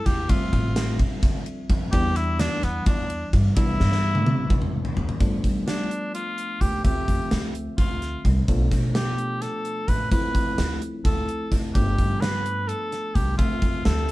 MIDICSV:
0, 0, Header, 1, 5, 480
1, 0, Start_track
1, 0, Tempo, 467654
1, 305, Time_signature, 7, 3, 24, 8
1, 14491, End_track
2, 0, Start_track
2, 0, Title_t, "Cor anglais"
2, 0, Program_c, 0, 69
2, 62, Note_on_c, 0, 67, 84
2, 303, Note_on_c, 0, 65, 91
2, 319, Note_off_c, 0, 67, 0
2, 1024, Note_off_c, 0, 65, 0
2, 1970, Note_on_c, 0, 67, 111
2, 2220, Note_on_c, 0, 64, 106
2, 2235, Note_off_c, 0, 67, 0
2, 2460, Note_on_c, 0, 62, 98
2, 2475, Note_off_c, 0, 64, 0
2, 2703, Note_on_c, 0, 59, 87
2, 2719, Note_off_c, 0, 62, 0
2, 2934, Note_off_c, 0, 59, 0
2, 2940, Note_on_c, 0, 62, 82
2, 3388, Note_off_c, 0, 62, 0
2, 3656, Note_on_c, 0, 64, 123
2, 4818, Note_off_c, 0, 64, 0
2, 5822, Note_on_c, 0, 62, 82
2, 6269, Note_off_c, 0, 62, 0
2, 6307, Note_on_c, 0, 65, 95
2, 6785, Note_on_c, 0, 67, 100
2, 6801, Note_off_c, 0, 65, 0
2, 7024, Note_off_c, 0, 67, 0
2, 7029, Note_on_c, 0, 67, 90
2, 7706, Note_off_c, 0, 67, 0
2, 7978, Note_on_c, 0, 65, 88
2, 8483, Note_off_c, 0, 65, 0
2, 9185, Note_on_c, 0, 67, 89
2, 9665, Note_on_c, 0, 69, 90
2, 9681, Note_off_c, 0, 67, 0
2, 10146, Note_on_c, 0, 71, 101
2, 10161, Note_off_c, 0, 69, 0
2, 10380, Note_off_c, 0, 71, 0
2, 10386, Note_on_c, 0, 71, 95
2, 11063, Note_off_c, 0, 71, 0
2, 11337, Note_on_c, 0, 69, 90
2, 11842, Note_off_c, 0, 69, 0
2, 12051, Note_on_c, 0, 67, 89
2, 12529, Note_on_c, 0, 71, 107
2, 12544, Note_off_c, 0, 67, 0
2, 13015, Note_on_c, 0, 69, 87
2, 13031, Note_off_c, 0, 71, 0
2, 13494, Note_on_c, 0, 67, 79
2, 13510, Note_off_c, 0, 69, 0
2, 13722, Note_off_c, 0, 67, 0
2, 13728, Note_on_c, 0, 65, 89
2, 14180, Note_off_c, 0, 65, 0
2, 14218, Note_on_c, 0, 69, 96
2, 14491, Note_off_c, 0, 69, 0
2, 14491, End_track
3, 0, Start_track
3, 0, Title_t, "Tine electric piano"
3, 0, Program_c, 1, 4
3, 0, Note_on_c, 1, 53, 66
3, 0, Note_on_c, 1, 57, 60
3, 0, Note_on_c, 1, 59, 55
3, 0, Note_on_c, 1, 64, 72
3, 269, Note_off_c, 1, 59, 0
3, 270, Note_off_c, 1, 53, 0
3, 270, Note_off_c, 1, 64, 0
3, 271, Note_off_c, 1, 57, 0
3, 302, Note_on_c, 1, 53, 64
3, 302, Note_on_c, 1, 55, 62
3, 305, Note_on_c, 1, 60, 64
3, 305, Note_on_c, 1, 76, 76
3, 1949, Note_off_c, 1, 53, 0
3, 1949, Note_off_c, 1, 55, 0
3, 1950, Note_off_c, 1, 60, 0
3, 1950, Note_off_c, 1, 76, 0
3, 1980, Note_on_c, 1, 52, 70
3, 1982, Note_on_c, 1, 59, 59
3, 1982, Note_on_c, 1, 62, 76
3, 1983, Note_on_c, 1, 55, 62
3, 3627, Note_off_c, 1, 52, 0
3, 3628, Note_off_c, 1, 59, 0
3, 3629, Note_off_c, 1, 55, 0
3, 3629, Note_off_c, 1, 62, 0
3, 3660, Note_on_c, 1, 52, 65
3, 3662, Note_on_c, 1, 55, 65
3, 3662, Note_on_c, 1, 62, 76
3, 3663, Note_on_c, 1, 59, 63
3, 5308, Note_off_c, 1, 52, 0
3, 5309, Note_off_c, 1, 55, 0
3, 5309, Note_off_c, 1, 59, 0
3, 5309, Note_off_c, 1, 62, 0
3, 5343, Note_on_c, 1, 57, 65
3, 5344, Note_on_c, 1, 53, 71
3, 5344, Note_on_c, 1, 59, 63
3, 5345, Note_on_c, 1, 62, 74
3, 6990, Note_off_c, 1, 57, 0
3, 6991, Note_off_c, 1, 53, 0
3, 6991, Note_off_c, 1, 59, 0
3, 6991, Note_off_c, 1, 62, 0
3, 7021, Note_on_c, 1, 57, 56
3, 7022, Note_on_c, 1, 60, 56
3, 7022, Note_on_c, 1, 76, 71
3, 7023, Note_on_c, 1, 53, 60
3, 8669, Note_off_c, 1, 57, 0
3, 8670, Note_off_c, 1, 53, 0
3, 8670, Note_off_c, 1, 60, 0
3, 8670, Note_off_c, 1, 76, 0
3, 8706, Note_on_c, 1, 57, 73
3, 8707, Note_on_c, 1, 53, 76
3, 8708, Note_on_c, 1, 62, 81
3, 8709, Note_on_c, 1, 59, 61
3, 10351, Note_off_c, 1, 53, 0
3, 10351, Note_off_c, 1, 57, 0
3, 10352, Note_off_c, 1, 59, 0
3, 10352, Note_off_c, 1, 62, 0
3, 10385, Note_on_c, 1, 57, 57
3, 10385, Note_on_c, 1, 60, 57
3, 10386, Note_on_c, 1, 53, 59
3, 10386, Note_on_c, 1, 64, 71
3, 12029, Note_off_c, 1, 60, 0
3, 12030, Note_off_c, 1, 53, 0
3, 12030, Note_off_c, 1, 57, 0
3, 12030, Note_off_c, 1, 64, 0
3, 12061, Note_on_c, 1, 57, 52
3, 12062, Note_on_c, 1, 59, 50
3, 12062, Note_on_c, 1, 62, 70
3, 12063, Note_on_c, 1, 53, 55
3, 13707, Note_off_c, 1, 57, 0
3, 13707, Note_off_c, 1, 59, 0
3, 13707, Note_off_c, 1, 62, 0
3, 13708, Note_off_c, 1, 53, 0
3, 13740, Note_on_c, 1, 57, 59
3, 13740, Note_on_c, 1, 76, 73
3, 13741, Note_on_c, 1, 60, 51
3, 13742, Note_on_c, 1, 53, 62
3, 14491, Note_off_c, 1, 53, 0
3, 14491, Note_off_c, 1, 57, 0
3, 14491, Note_off_c, 1, 60, 0
3, 14491, Note_off_c, 1, 76, 0
3, 14491, End_track
4, 0, Start_track
4, 0, Title_t, "Upright bass"
4, 0, Program_c, 2, 32
4, 65, Note_on_c, 2, 40, 90
4, 248, Note_off_c, 2, 40, 0
4, 304, Note_on_c, 2, 38, 93
4, 488, Note_off_c, 2, 38, 0
4, 544, Note_on_c, 2, 33, 101
4, 1022, Note_on_c, 2, 50, 88
4, 1037, Note_off_c, 2, 33, 0
4, 1206, Note_off_c, 2, 50, 0
4, 1262, Note_on_c, 2, 50, 103
4, 1629, Note_off_c, 2, 50, 0
4, 1741, Note_on_c, 2, 41, 97
4, 1926, Note_off_c, 2, 41, 0
4, 1980, Note_on_c, 2, 40, 106
4, 2531, Note_off_c, 2, 40, 0
4, 2698, Note_on_c, 2, 40, 99
4, 2884, Note_off_c, 2, 40, 0
4, 2941, Note_on_c, 2, 40, 92
4, 3308, Note_off_c, 2, 40, 0
4, 3419, Note_on_c, 2, 43, 94
4, 3604, Note_off_c, 2, 43, 0
4, 3662, Note_on_c, 2, 36, 91
4, 3846, Note_off_c, 2, 36, 0
4, 3905, Note_on_c, 2, 43, 102
4, 4384, Note_off_c, 2, 43, 0
4, 4384, Note_on_c, 2, 48, 98
4, 4567, Note_off_c, 2, 48, 0
4, 4620, Note_on_c, 2, 48, 97
4, 4988, Note_off_c, 2, 48, 0
4, 5099, Note_on_c, 2, 40, 86
4, 5284, Note_off_c, 2, 40, 0
4, 5341, Note_on_c, 2, 43, 88
4, 5525, Note_off_c, 2, 43, 0
4, 5584, Note_on_c, 2, 55, 80
4, 6317, Note_off_c, 2, 55, 0
4, 6786, Note_on_c, 2, 38, 88
4, 6968, Note_off_c, 2, 38, 0
4, 7027, Note_on_c, 2, 38, 88
4, 7209, Note_off_c, 2, 38, 0
4, 7268, Note_on_c, 2, 41, 81
4, 7358, Note_off_c, 2, 41, 0
4, 7507, Note_on_c, 2, 38, 90
4, 7873, Note_off_c, 2, 38, 0
4, 7986, Note_on_c, 2, 38, 85
4, 8352, Note_off_c, 2, 38, 0
4, 8468, Note_on_c, 2, 36, 96
4, 8650, Note_off_c, 2, 36, 0
4, 8707, Note_on_c, 2, 35, 89
4, 8889, Note_off_c, 2, 35, 0
4, 8945, Note_on_c, 2, 47, 87
4, 9678, Note_off_c, 2, 47, 0
4, 10143, Note_on_c, 2, 33, 77
4, 10327, Note_off_c, 2, 33, 0
4, 10384, Note_on_c, 2, 38, 95
4, 10567, Note_off_c, 2, 38, 0
4, 10623, Note_on_c, 2, 41, 79
4, 10715, Note_off_c, 2, 41, 0
4, 10861, Note_on_c, 2, 38, 96
4, 11228, Note_off_c, 2, 38, 0
4, 11341, Note_on_c, 2, 38, 82
4, 11708, Note_off_c, 2, 38, 0
4, 11821, Note_on_c, 2, 38, 93
4, 12005, Note_off_c, 2, 38, 0
4, 12062, Note_on_c, 2, 31, 88
4, 12245, Note_off_c, 2, 31, 0
4, 12302, Note_on_c, 2, 43, 78
4, 13035, Note_off_c, 2, 43, 0
4, 13502, Note_on_c, 2, 36, 86
4, 13685, Note_off_c, 2, 36, 0
4, 13743, Note_on_c, 2, 38, 90
4, 13926, Note_off_c, 2, 38, 0
4, 13982, Note_on_c, 2, 41, 85
4, 14073, Note_off_c, 2, 41, 0
4, 14224, Note_on_c, 2, 38, 96
4, 14491, Note_off_c, 2, 38, 0
4, 14491, End_track
5, 0, Start_track
5, 0, Title_t, "Drums"
5, 61, Note_on_c, 9, 38, 38
5, 61, Note_on_c, 9, 51, 67
5, 63, Note_on_c, 9, 36, 80
5, 164, Note_off_c, 9, 38, 0
5, 164, Note_off_c, 9, 51, 0
5, 165, Note_off_c, 9, 36, 0
5, 299, Note_on_c, 9, 51, 81
5, 303, Note_on_c, 9, 36, 102
5, 402, Note_off_c, 9, 51, 0
5, 406, Note_off_c, 9, 36, 0
5, 542, Note_on_c, 9, 51, 59
5, 543, Note_on_c, 9, 36, 77
5, 645, Note_off_c, 9, 51, 0
5, 646, Note_off_c, 9, 36, 0
5, 781, Note_on_c, 9, 38, 124
5, 781, Note_on_c, 9, 51, 84
5, 883, Note_off_c, 9, 38, 0
5, 883, Note_off_c, 9, 51, 0
5, 1019, Note_on_c, 9, 51, 63
5, 1021, Note_on_c, 9, 36, 75
5, 1122, Note_off_c, 9, 51, 0
5, 1124, Note_off_c, 9, 36, 0
5, 1259, Note_on_c, 9, 38, 31
5, 1259, Note_on_c, 9, 51, 73
5, 1261, Note_on_c, 9, 36, 97
5, 1362, Note_off_c, 9, 38, 0
5, 1362, Note_off_c, 9, 51, 0
5, 1364, Note_off_c, 9, 36, 0
5, 1499, Note_on_c, 9, 51, 54
5, 1602, Note_off_c, 9, 51, 0
5, 1741, Note_on_c, 9, 36, 83
5, 1741, Note_on_c, 9, 51, 62
5, 1844, Note_off_c, 9, 36, 0
5, 1844, Note_off_c, 9, 51, 0
5, 1977, Note_on_c, 9, 51, 87
5, 1980, Note_on_c, 9, 36, 101
5, 2079, Note_off_c, 9, 51, 0
5, 2082, Note_off_c, 9, 36, 0
5, 2215, Note_on_c, 9, 38, 38
5, 2215, Note_on_c, 9, 51, 70
5, 2318, Note_off_c, 9, 38, 0
5, 2318, Note_off_c, 9, 51, 0
5, 2458, Note_on_c, 9, 38, 111
5, 2458, Note_on_c, 9, 51, 95
5, 2560, Note_off_c, 9, 38, 0
5, 2560, Note_off_c, 9, 51, 0
5, 2700, Note_on_c, 9, 38, 37
5, 2700, Note_on_c, 9, 51, 69
5, 2803, Note_off_c, 9, 38, 0
5, 2803, Note_off_c, 9, 51, 0
5, 2937, Note_on_c, 9, 51, 82
5, 2940, Note_on_c, 9, 36, 113
5, 3039, Note_off_c, 9, 51, 0
5, 3042, Note_off_c, 9, 36, 0
5, 3179, Note_on_c, 9, 51, 64
5, 3282, Note_off_c, 9, 51, 0
5, 3420, Note_on_c, 9, 36, 84
5, 3420, Note_on_c, 9, 51, 68
5, 3523, Note_off_c, 9, 36, 0
5, 3523, Note_off_c, 9, 51, 0
5, 3657, Note_on_c, 9, 51, 84
5, 3661, Note_on_c, 9, 36, 122
5, 3760, Note_off_c, 9, 51, 0
5, 3764, Note_off_c, 9, 36, 0
5, 3901, Note_on_c, 9, 38, 64
5, 4004, Note_off_c, 9, 38, 0
5, 4022, Note_on_c, 9, 38, 58
5, 4124, Note_off_c, 9, 38, 0
5, 4260, Note_on_c, 9, 48, 70
5, 4363, Note_off_c, 9, 48, 0
5, 4378, Note_on_c, 9, 48, 91
5, 4480, Note_off_c, 9, 48, 0
5, 4620, Note_on_c, 9, 47, 80
5, 4622, Note_on_c, 9, 36, 99
5, 4723, Note_off_c, 9, 47, 0
5, 4724, Note_off_c, 9, 36, 0
5, 4739, Note_on_c, 9, 45, 79
5, 4841, Note_off_c, 9, 45, 0
5, 4977, Note_on_c, 9, 43, 88
5, 5079, Note_off_c, 9, 43, 0
5, 5099, Note_on_c, 9, 43, 98
5, 5201, Note_off_c, 9, 43, 0
5, 5222, Note_on_c, 9, 43, 91
5, 5325, Note_off_c, 9, 43, 0
5, 5341, Note_on_c, 9, 42, 81
5, 5343, Note_on_c, 9, 36, 104
5, 5444, Note_off_c, 9, 42, 0
5, 5445, Note_off_c, 9, 36, 0
5, 5584, Note_on_c, 9, 36, 74
5, 5585, Note_on_c, 9, 42, 56
5, 5686, Note_off_c, 9, 36, 0
5, 5687, Note_off_c, 9, 42, 0
5, 5826, Note_on_c, 9, 38, 104
5, 5826, Note_on_c, 9, 42, 84
5, 5929, Note_off_c, 9, 38, 0
5, 5929, Note_off_c, 9, 42, 0
5, 6068, Note_on_c, 9, 42, 62
5, 6170, Note_off_c, 9, 42, 0
5, 6309, Note_on_c, 9, 42, 77
5, 6412, Note_off_c, 9, 42, 0
5, 6548, Note_on_c, 9, 42, 62
5, 6651, Note_off_c, 9, 42, 0
5, 6786, Note_on_c, 9, 36, 67
5, 6789, Note_on_c, 9, 42, 61
5, 6888, Note_off_c, 9, 36, 0
5, 6892, Note_off_c, 9, 42, 0
5, 7027, Note_on_c, 9, 36, 96
5, 7029, Note_on_c, 9, 42, 73
5, 7129, Note_off_c, 9, 36, 0
5, 7131, Note_off_c, 9, 42, 0
5, 7267, Note_on_c, 9, 36, 74
5, 7270, Note_on_c, 9, 42, 61
5, 7370, Note_off_c, 9, 36, 0
5, 7373, Note_off_c, 9, 42, 0
5, 7506, Note_on_c, 9, 38, 101
5, 7506, Note_on_c, 9, 42, 76
5, 7609, Note_off_c, 9, 38, 0
5, 7609, Note_off_c, 9, 42, 0
5, 7749, Note_on_c, 9, 42, 60
5, 7851, Note_off_c, 9, 42, 0
5, 7987, Note_on_c, 9, 36, 102
5, 7989, Note_on_c, 9, 42, 69
5, 8089, Note_off_c, 9, 36, 0
5, 8092, Note_off_c, 9, 42, 0
5, 8232, Note_on_c, 9, 38, 33
5, 8232, Note_on_c, 9, 42, 55
5, 8335, Note_off_c, 9, 38, 0
5, 8335, Note_off_c, 9, 42, 0
5, 8467, Note_on_c, 9, 36, 72
5, 8468, Note_on_c, 9, 42, 54
5, 8569, Note_off_c, 9, 36, 0
5, 8571, Note_off_c, 9, 42, 0
5, 8706, Note_on_c, 9, 36, 94
5, 8710, Note_on_c, 9, 42, 67
5, 8809, Note_off_c, 9, 36, 0
5, 8813, Note_off_c, 9, 42, 0
5, 8944, Note_on_c, 9, 38, 33
5, 8944, Note_on_c, 9, 42, 63
5, 8945, Note_on_c, 9, 36, 83
5, 9047, Note_off_c, 9, 38, 0
5, 9047, Note_off_c, 9, 42, 0
5, 9048, Note_off_c, 9, 36, 0
5, 9186, Note_on_c, 9, 38, 102
5, 9186, Note_on_c, 9, 42, 76
5, 9288, Note_off_c, 9, 38, 0
5, 9288, Note_off_c, 9, 42, 0
5, 9426, Note_on_c, 9, 42, 55
5, 9528, Note_off_c, 9, 42, 0
5, 9666, Note_on_c, 9, 38, 29
5, 9666, Note_on_c, 9, 42, 73
5, 9768, Note_off_c, 9, 38, 0
5, 9768, Note_off_c, 9, 42, 0
5, 9903, Note_on_c, 9, 42, 51
5, 10006, Note_off_c, 9, 42, 0
5, 10142, Note_on_c, 9, 36, 75
5, 10142, Note_on_c, 9, 42, 63
5, 10245, Note_off_c, 9, 36, 0
5, 10245, Note_off_c, 9, 42, 0
5, 10383, Note_on_c, 9, 36, 104
5, 10385, Note_on_c, 9, 42, 85
5, 10485, Note_off_c, 9, 36, 0
5, 10487, Note_off_c, 9, 42, 0
5, 10621, Note_on_c, 9, 36, 83
5, 10623, Note_on_c, 9, 42, 59
5, 10723, Note_off_c, 9, 36, 0
5, 10725, Note_off_c, 9, 42, 0
5, 10861, Note_on_c, 9, 38, 106
5, 10861, Note_on_c, 9, 42, 84
5, 10964, Note_off_c, 9, 38, 0
5, 10964, Note_off_c, 9, 42, 0
5, 11103, Note_on_c, 9, 42, 64
5, 11205, Note_off_c, 9, 42, 0
5, 11341, Note_on_c, 9, 36, 104
5, 11342, Note_on_c, 9, 42, 76
5, 11443, Note_off_c, 9, 36, 0
5, 11445, Note_off_c, 9, 42, 0
5, 11583, Note_on_c, 9, 42, 59
5, 11686, Note_off_c, 9, 42, 0
5, 11820, Note_on_c, 9, 36, 71
5, 11820, Note_on_c, 9, 38, 32
5, 11820, Note_on_c, 9, 42, 64
5, 11922, Note_off_c, 9, 38, 0
5, 11922, Note_off_c, 9, 42, 0
5, 11923, Note_off_c, 9, 36, 0
5, 12061, Note_on_c, 9, 36, 100
5, 12063, Note_on_c, 9, 42, 78
5, 12164, Note_off_c, 9, 36, 0
5, 12166, Note_off_c, 9, 42, 0
5, 12301, Note_on_c, 9, 36, 76
5, 12306, Note_on_c, 9, 42, 57
5, 12404, Note_off_c, 9, 36, 0
5, 12409, Note_off_c, 9, 42, 0
5, 12546, Note_on_c, 9, 38, 103
5, 12546, Note_on_c, 9, 42, 79
5, 12649, Note_off_c, 9, 38, 0
5, 12649, Note_off_c, 9, 42, 0
5, 12786, Note_on_c, 9, 42, 60
5, 12889, Note_off_c, 9, 42, 0
5, 13024, Note_on_c, 9, 42, 69
5, 13127, Note_off_c, 9, 42, 0
5, 13264, Note_on_c, 9, 38, 28
5, 13264, Note_on_c, 9, 42, 50
5, 13367, Note_off_c, 9, 38, 0
5, 13367, Note_off_c, 9, 42, 0
5, 13502, Note_on_c, 9, 36, 78
5, 13505, Note_on_c, 9, 42, 59
5, 13604, Note_off_c, 9, 36, 0
5, 13607, Note_off_c, 9, 42, 0
5, 13742, Note_on_c, 9, 36, 103
5, 13743, Note_on_c, 9, 42, 79
5, 13844, Note_off_c, 9, 36, 0
5, 13846, Note_off_c, 9, 42, 0
5, 13979, Note_on_c, 9, 42, 55
5, 13980, Note_on_c, 9, 36, 84
5, 14081, Note_off_c, 9, 42, 0
5, 14083, Note_off_c, 9, 36, 0
5, 14219, Note_on_c, 9, 38, 114
5, 14219, Note_on_c, 9, 42, 86
5, 14322, Note_off_c, 9, 38, 0
5, 14322, Note_off_c, 9, 42, 0
5, 14459, Note_on_c, 9, 42, 59
5, 14491, Note_off_c, 9, 42, 0
5, 14491, End_track
0, 0, End_of_file